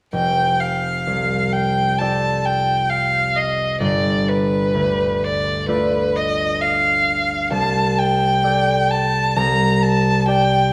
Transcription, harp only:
0, 0, Header, 1, 2, 480
1, 0, Start_track
1, 0, Tempo, 928793
1, 62, Time_signature, 4, 2, 24, 8
1, 2942, Tempo, 916031
1, 5581, End_track
2, 0, Start_track
2, 0, Title_t, "Harp"
2, 0, Program_c, 0, 46
2, 65, Note_on_c, 0, 29, 33
2, 554, Note_on_c, 0, 36, 25
2, 1032, Note_on_c, 0, 60, 26
2, 1034, Note_on_c, 0, 65, 26
2, 1038, Note_on_c, 0, 69, 27
2, 1039, Note_on_c, 0, 74, 29
2, 1964, Note_on_c, 0, 31, 35
2, 1992, Note_off_c, 0, 29, 0
2, 1994, Note_off_c, 0, 60, 0
2, 1995, Note_off_c, 0, 36, 0
2, 2451, Note_on_c, 0, 38, 28
2, 2932, Note_off_c, 0, 69, 0
2, 2933, Note_off_c, 0, 65, 0
2, 2934, Note_on_c, 0, 57, 27
2, 2935, Note_off_c, 0, 74, 0
2, 2938, Note_on_c, 0, 65, 29
2, 2940, Note_on_c, 0, 69, 29
2, 2941, Note_on_c, 0, 74, 31
2, 3892, Note_on_c, 0, 36, 37
2, 3912, Note_off_c, 0, 31, 0
2, 3913, Note_off_c, 0, 38, 0
2, 3915, Note_off_c, 0, 65, 0
2, 4375, Note_off_c, 0, 69, 0
2, 4375, Note_off_c, 0, 74, 0
2, 4380, Note_on_c, 0, 69, 30
2, 4383, Note_on_c, 0, 74, 32
2, 4859, Note_off_c, 0, 36, 0
2, 4865, Note_on_c, 0, 36, 39
2, 4882, Note_off_c, 0, 57, 0
2, 4886, Note_off_c, 0, 69, 0
2, 5340, Note_off_c, 0, 74, 0
2, 5344, Note_on_c, 0, 67, 31
2, 5348, Note_on_c, 0, 74, 33
2, 5581, Note_off_c, 0, 36, 0
2, 5581, Note_off_c, 0, 67, 0
2, 5581, Note_off_c, 0, 74, 0
2, 5581, End_track
0, 0, End_of_file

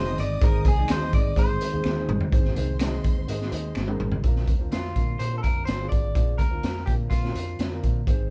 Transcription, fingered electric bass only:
0, 0, Header, 1, 3, 480
1, 0, Start_track
1, 0, Tempo, 478469
1, 421, Time_signature, 4, 2, 24, 8
1, 8329, End_track
2, 0, Start_track
2, 0, Title_t, "Fingered electric bass"
2, 0, Program_c, 0, 33
2, 0, Note_on_c, 0, 29, 94
2, 148, Note_off_c, 0, 29, 0
2, 185, Note_on_c, 0, 31, 99
2, 388, Note_off_c, 0, 31, 0
2, 419, Note_on_c, 0, 32, 108
2, 624, Note_off_c, 0, 32, 0
2, 653, Note_on_c, 0, 36, 88
2, 860, Note_off_c, 0, 36, 0
2, 904, Note_on_c, 0, 39, 89
2, 1106, Note_off_c, 0, 39, 0
2, 1138, Note_on_c, 0, 44, 100
2, 1342, Note_off_c, 0, 44, 0
2, 1367, Note_on_c, 0, 44, 95
2, 1575, Note_off_c, 0, 44, 0
2, 1743, Note_on_c, 0, 39, 92
2, 1842, Note_off_c, 0, 39, 0
2, 1859, Note_on_c, 0, 39, 94
2, 2062, Note_off_c, 0, 39, 0
2, 2099, Note_on_c, 0, 31, 94
2, 2199, Note_off_c, 0, 31, 0
2, 2332, Note_on_c, 0, 32, 104
2, 2537, Note_off_c, 0, 32, 0
2, 2578, Note_on_c, 0, 36, 90
2, 2985, Note_off_c, 0, 36, 0
2, 3055, Note_on_c, 0, 39, 80
2, 3259, Note_off_c, 0, 39, 0
2, 3294, Note_on_c, 0, 44, 100
2, 3498, Note_off_c, 0, 44, 0
2, 3528, Note_on_c, 0, 39, 89
2, 3735, Note_off_c, 0, 39, 0
2, 3771, Note_on_c, 0, 31, 86
2, 3977, Note_off_c, 0, 31, 0
2, 4014, Note_on_c, 0, 32, 84
2, 4218, Note_off_c, 0, 32, 0
2, 4252, Note_on_c, 0, 34, 92
2, 4488, Note_off_c, 0, 34, 0
2, 4488, Note_on_c, 0, 38, 76
2, 4695, Note_off_c, 0, 38, 0
2, 4731, Note_on_c, 0, 41, 75
2, 4937, Note_off_c, 0, 41, 0
2, 4978, Note_on_c, 0, 46, 81
2, 5182, Note_off_c, 0, 46, 0
2, 5213, Note_on_c, 0, 46, 81
2, 5419, Note_off_c, 0, 46, 0
2, 5456, Note_on_c, 0, 41, 75
2, 5661, Note_off_c, 0, 41, 0
2, 5696, Note_on_c, 0, 31, 74
2, 5901, Note_off_c, 0, 31, 0
2, 5939, Note_on_c, 0, 32, 81
2, 6171, Note_off_c, 0, 32, 0
2, 6171, Note_on_c, 0, 34, 94
2, 6379, Note_off_c, 0, 34, 0
2, 6409, Note_on_c, 0, 38, 71
2, 6618, Note_off_c, 0, 38, 0
2, 6657, Note_on_c, 0, 41, 82
2, 6863, Note_off_c, 0, 41, 0
2, 6897, Note_on_c, 0, 46, 84
2, 7104, Note_off_c, 0, 46, 0
2, 7131, Note_on_c, 0, 46, 97
2, 7340, Note_off_c, 0, 46, 0
2, 7377, Note_on_c, 0, 41, 83
2, 7584, Note_off_c, 0, 41, 0
2, 7615, Note_on_c, 0, 41, 80
2, 7823, Note_off_c, 0, 41, 0
2, 7862, Note_on_c, 0, 46, 82
2, 8067, Note_off_c, 0, 46, 0
2, 8098, Note_on_c, 0, 32, 100
2, 8305, Note_off_c, 0, 32, 0
2, 8329, End_track
3, 0, Start_track
3, 0, Title_t, "Muted fingered electric bass strokes"
3, 1620, Note_on_c, 9, 29, 49
3, 1720, Note_off_c, 9, 29, 0
3, 8329, End_track
0, 0, End_of_file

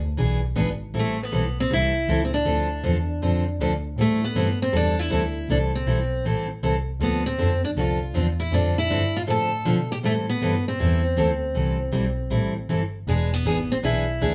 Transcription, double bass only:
0, 0, Header, 1, 2, 480
1, 0, Start_track
1, 0, Key_signature, 0, "minor"
1, 0, Tempo, 379027
1, 1193, Time_signature, 4, 2, 24, 8
1, 18168, End_track
2, 0, Start_track
2, 0, Title_t, "Double bass"
2, 0, Program_c, 0, 43
2, 60, Note_on_c, 0, 38, 45
2, 224, Note_off_c, 0, 38, 0
2, 240, Note_on_c, 0, 35, 91
2, 702, Note_off_c, 0, 35, 0
2, 715, Note_on_c, 0, 32, 93
2, 1179, Note_off_c, 0, 32, 0
2, 1188, Note_on_c, 0, 33, 77
2, 1655, Note_off_c, 0, 33, 0
2, 1681, Note_on_c, 0, 35, 83
2, 2141, Note_off_c, 0, 35, 0
2, 2161, Note_on_c, 0, 36, 82
2, 2621, Note_off_c, 0, 36, 0
2, 2631, Note_on_c, 0, 37, 82
2, 3096, Note_off_c, 0, 37, 0
2, 3114, Note_on_c, 0, 38, 86
2, 3577, Note_off_c, 0, 38, 0
2, 3601, Note_on_c, 0, 40, 83
2, 4061, Note_off_c, 0, 40, 0
2, 4073, Note_on_c, 0, 41, 79
2, 4536, Note_off_c, 0, 41, 0
2, 4552, Note_on_c, 0, 38, 78
2, 5009, Note_off_c, 0, 38, 0
2, 5016, Note_on_c, 0, 45, 82
2, 5488, Note_off_c, 0, 45, 0
2, 5506, Note_on_c, 0, 43, 90
2, 5973, Note_off_c, 0, 43, 0
2, 5987, Note_on_c, 0, 40, 85
2, 6453, Note_off_c, 0, 40, 0
2, 6470, Note_on_c, 0, 38, 82
2, 6934, Note_off_c, 0, 38, 0
2, 6947, Note_on_c, 0, 36, 87
2, 7413, Note_off_c, 0, 36, 0
2, 7430, Note_on_c, 0, 35, 84
2, 7891, Note_off_c, 0, 35, 0
2, 7899, Note_on_c, 0, 33, 76
2, 8369, Note_off_c, 0, 33, 0
2, 8395, Note_on_c, 0, 36, 78
2, 8850, Note_off_c, 0, 36, 0
2, 8858, Note_on_c, 0, 38, 85
2, 9329, Note_off_c, 0, 38, 0
2, 9348, Note_on_c, 0, 41, 81
2, 9630, Note_off_c, 0, 41, 0
2, 9657, Note_on_c, 0, 41, 39
2, 9820, Note_off_c, 0, 41, 0
2, 9831, Note_on_c, 0, 36, 77
2, 10296, Note_off_c, 0, 36, 0
2, 10309, Note_on_c, 0, 40, 83
2, 10768, Note_off_c, 0, 40, 0
2, 10776, Note_on_c, 0, 41, 85
2, 11249, Note_off_c, 0, 41, 0
2, 11268, Note_on_c, 0, 43, 87
2, 11735, Note_off_c, 0, 43, 0
2, 11752, Note_on_c, 0, 45, 78
2, 12217, Note_off_c, 0, 45, 0
2, 12227, Note_on_c, 0, 47, 82
2, 12695, Note_off_c, 0, 47, 0
2, 12718, Note_on_c, 0, 45, 85
2, 13181, Note_off_c, 0, 45, 0
2, 13193, Note_on_c, 0, 43, 83
2, 13659, Note_off_c, 0, 43, 0
2, 13683, Note_on_c, 0, 40, 87
2, 14144, Note_off_c, 0, 40, 0
2, 14164, Note_on_c, 0, 38, 83
2, 14625, Note_off_c, 0, 38, 0
2, 14638, Note_on_c, 0, 36, 85
2, 15102, Note_off_c, 0, 36, 0
2, 15110, Note_on_c, 0, 35, 87
2, 15578, Note_off_c, 0, 35, 0
2, 15592, Note_on_c, 0, 33, 79
2, 16056, Note_off_c, 0, 33, 0
2, 16064, Note_on_c, 0, 31, 77
2, 16535, Note_off_c, 0, 31, 0
2, 16551, Note_on_c, 0, 28, 83
2, 16834, Note_off_c, 0, 28, 0
2, 16856, Note_on_c, 0, 28, 41
2, 17021, Note_off_c, 0, 28, 0
2, 17037, Note_on_c, 0, 32, 80
2, 17317, Note_off_c, 0, 32, 0
2, 17342, Note_on_c, 0, 32, 38
2, 17505, Note_off_c, 0, 32, 0
2, 17522, Note_on_c, 0, 35, 81
2, 17984, Note_off_c, 0, 35, 0
2, 18000, Note_on_c, 0, 38, 80
2, 18168, Note_off_c, 0, 38, 0
2, 18168, End_track
0, 0, End_of_file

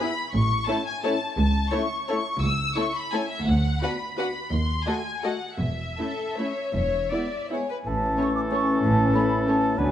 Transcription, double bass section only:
0, 0, Header, 1, 2, 480
1, 0, Start_track
1, 0, Key_signature, 3, "major"
1, 0, Tempo, 346420
1, 478, Time_signature, 3, 2, 24, 8
1, 6732, Tempo, 374766
1, 10572, Tempo, 319659
1, 13663, End_track
2, 0, Start_track
2, 0, Title_t, "Double bass section"
2, 0, Program_c, 0, 48
2, 479, Note_on_c, 0, 33, 71
2, 852, Note_off_c, 0, 33, 0
2, 1900, Note_on_c, 0, 37, 68
2, 2279, Note_off_c, 0, 37, 0
2, 3351, Note_on_c, 0, 37, 71
2, 3723, Note_off_c, 0, 37, 0
2, 4799, Note_on_c, 0, 38, 68
2, 5177, Note_off_c, 0, 38, 0
2, 6261, Note_on_c, 0, 39, 56
2, 6630, Note_off_c, 0, 39, 0
2, 7698, Note_on_c, 0, 28, 48
2, 8069, Note_off_c, 0, 28, 0
2, 9153, Note_on_c, 0, 28, 51
2, 9527, Note_off_c, 0, 28, 0
2, 10587, Note_on_c, 0, 33, 50
2, 10983, Note_off_c, 0, 33, 0
2, 12035, Note_on_c, 0, 33, 50
2, 12424, Note_off_c, 0, 33, 0
2, 13462, Note_on_c, 0, 38, 52
2, 13663, Note_off_c, 0, 38, 0
2, 13663, End_track
0, 0, End_of_file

